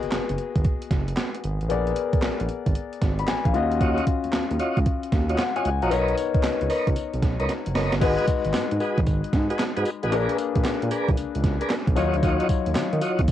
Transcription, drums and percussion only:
0.03 closed hi-hat
0.12 snare, clap, closed hi-hat
0.29 closed hi-hat
0.38 closed hi-hat
0.56 kick, closed hi-hat
0.65 kick, closed hi-hat
0.82 closed hi-hat
0.91 kick, snare, closed hi-hat
1.08 closed hi-hat
1.17 snare, clap, closed hi-hat
1.35 closed hi-hat
1.44 closed hi-hat
1.61 closed hi-hat
1.70 closed hi-hat
1.87 closed hi-hat
1.96 closed hi-hat
2.13 kick, closed hi-hat
2.22 snare, clap, closed hi-hat
2.40 closed hi-hat
2.49 closed hi-hat
2.66 kick, closed hi-hat
2.75 closed hi-hat
2.93 closed hi-hat
3.01 kick, snare, closed hi-hat
3.19 closed hi-hat
3.28 snare, clap, closed hi-hat
3.45 kick, closed hi-hat
3.54 closed hi-hat
3.71 closed hi-hat
3.81 kick, closed hi-hat
3.98 closed hi-hat
4.07 kick, closed hi-hat
4.24 closed hi-hat
4.33 snare, clap, closed hi-hat
4.51 closed hi-hat
4.59 closed hi-hat
4.77 kick, closed hi-hat
4.86 kick, closed hi-hat
5.03 closed hi-hat
5.12 kick, snare, closed hi-hat
5.29 closed hi-hat
5.38 snare, clap, closed hi-hat
5.56 closed hi-hat
5.65 closed hi-hat
5.82 closed hi-hat
5.91 closed hi-hat, tambourine
6.08 closed hi-hat
6.17 closed hi-hat, tambourine
6.34 kick, closed hi-hat
6.44 snare, clap, closed hi-hat, tambourine
6.61 closed hi-hat
6.70 open hi-hat, tambourine
6.87 kick, closed hi-hat
6.96 closed hi-hat, tambourine
7.14 closed hi-hat
7.23 kick, snare, closed hi-hat
7.40 closed hi-hat
7.49 snare, closed hi-hat
7.66 closed hi-hat
7.75 snare, open hi-hat
7.93 snare, closed hi-hat
8.02 kick, closed hi-hat, crash, tambourine
8.19 closed hi-hat
8.28 kick, closed hi-hat, tambourine
8.45 closed hi-hat
8.54 snare, clap, closed hi-hat, tambourine
8.72 closed hi-hat
8.80 closed hi-hat, tambourine
8.98 kick, closed hi-hat
9.07 kick, closed hi-hat, tambourine
9.24 closed hi-hat
9.33 kick, snare, closed hi-hat
9.50 closed hi-hat
9.59 snare, clap, closed hi-hat, tambourine
9.77 closed hi-hat
9.85 closed hi-hat, tambourine
10.03 closed hi-hat
10.12 closed hi-hat, tambourine
10.29 closed hi-hat
10.38 closed hi-hat, tambourine
10.55 kick, closed hi-hat
10.64 snare, clap, closed hi-hat, tambourine
10.82 closed hi-hat
10.91 closed hi-hat, tambourine
11.08 kick, closed hi-hat
11.17 closed hi-hat, tambourine
11.35 closed hi-hat
11.44 kick, snare, closed hi-hat
11.61 closed hi-hat
11.70 snare, clap, closed hi-hat, tambourine
11.87 kick, closed hi-hat
11.96 closed hi-hat, tambourine
12.14 closed hi-hat
12.23 kick, closed hi-hat, tambourine
12.40 closed hi-hat
12.49 kick, closed hi-hat, tambourine
12.66 closed hi-hat
12.75 snare, clap, closed hi-hat, tambourine
12.93 closed hi-hat
13.01 closed hi-hat, tambourine
13.19 kick, closed hi-hat
13.28 kick, closed hi-hat, tambourine

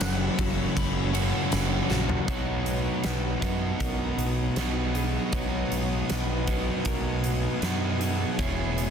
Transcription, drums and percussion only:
0.01 snare, ride, tambourine
0.39 kick, ride, tambourine
0.77 kick, ride, tambourine
1.14 ride, tambourine
1.52 snare, ride, tambourine
1.90 snare, tambourine
2.09 floor tom
2.28 kick, closed hi-hat
2.66 closed hi-hat
3.04 snare, closed hi-hat
3.42 kick, closed hi-hat
3.80 kick, closed hi-hat
4.19 closed hi-hat
4.56 snare, closed hi-hat
4.95 closed hi-hat
5.33 kick, closed hi-hat
5.72 closed hi-hat
6.10 snare, closed hi-hat
6.47 kick, closed hi-hat
6.85 kick, closed hi-hat
7.24 closed hi-hat
7.62 snare, closed hi-hat
8.01 closed hi-hat
8.39 kick, closed hi-hat
8.78 closed hi-hat

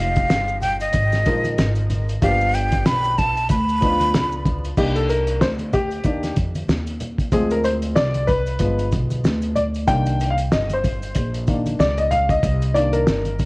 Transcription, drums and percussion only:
0.16 kick, closed hi-hat, maracas
0.30 snare, closed hi-hat, maracas
0.48 maracas
0.62 closed hi-hat, low conga, maracas
0.80 closed hi-hat, maracas
0.93 kick, closed hi-hat, maracas
1.12 snare, closed hi-hat, maracas
1.25 kick, closed hi-hat, high conga, maracas
1.44 closed hi-hat, high conga, maracas
1.58 snare, closed hi-hat, low conga, maracas
1.75 closed hi-hat, maracas
1.90 closed hi-hat, high conga, low conga, maracas
2.09 closed hi-hat, maracas
2.22 kick, closed hi-hat, maracas
2.40 maracas
2.54 closed hi-hat, maracas
2.72 kick, closed hi-hat, maracas
2.86 snare, closed hi-hat, maracas
3.04 maracas
3.18 kick, closed hi-hat, low conga, maracas
3.37 closed hi-hat, maracas
3.49 kick, closed hi-hat, high conga, maracas
3.68 closed hi-hat, maracas
3.82 kick, closed hi-hat, maracas
4.00 closed hi-hat, high conga, maracas
4.14 snare, closed hi-hat, low conga, maracas
4.32 maracas
4.45 kick, closed hi-hat, high conga, low conga, maracas
4.64 closed hi-hat, maracas
4.77 kick, crash, maracas
4.96 closed hi-hat, maracas
5.09 closed hi-hat, maracas
5.27 closed hi-hat, maracas
5.41 snare, maracas
5.59 closed hi-hat, high conga, maracas
5.73 kick, closed hi-hat, low conga, maracas
5.91 closed hi-hat, maracas
6.04 kick, closed hi-hat, maracas
6.23 snare, closed hi-hat, maracas
6.36 kick, closed hi-hat, high conga, maracas
6.55 closed hi-hat, high conga, maracas
6.69 snare, maracas
6.87 closed hi-hat, maracas
7.00 closed hi-hat, low conga, maracas
7.19 kick, closed hi-hat, maracas
7.32 kick, closed hi-hat, maracas
7.51 closed hi-hat, maracas
7.64 closed hi-hat, maracas
7.82 closed hi-hat, maracas
7.96 snare, maracas
8.14 closed hi-hat, high conga, maracas
8.28 kick, closed hi-hat, low conga, maracas
8.46 closed hi-hat, maracas
8.59 kick, closed hi-hat, maracas
8.79 closed hi-hat, maracas
8.92 kick, closed hi-hat, high conga, maracas
9.10 closed hi-hat, high conga, maracas
9.24 snare, maracas
9.42 closed hi-hat, maracas
9.56 closed hi-hat, low conga, maracas
9.74 closed hi-hat, maracas
9.88 kick, closed hi-hat, maracas
10.06 closed hi-hat, maracas
10.20 closed hi-hat, maracas
10.38 closed hi-hat, maracas
10.52 snare, maracas
10.70 closed hi-hat, high conga, maracas
10.84 kick, closed hi-hat, low conga, maracas
11.02 closed hi-hat, maracas
11.15 kick, closed hi-hat, maracas
11.34 closed hi-hat, maracas
11.47 kick, closed hi-hat, high conga, maracas
11.66 closed hi-hat, high conga, maracas
11.80 snare, maracas
11.97 closed hi-hat, maracas
12.11 closed hi-hat, low conga, maracas
12.29 kick, closed hi-hat, maracas
12.43 kick, closed hi-hat, maracas
12.62 closed hi-hat, maracas
12.75 closed hi-hat, maracas
12.93 closed hi-hat, maracas
13.07 snare, maracas
13.25 closed hi-hat, high conga, maracas
13.39 kick, closed hi-hat, low conga, maracas

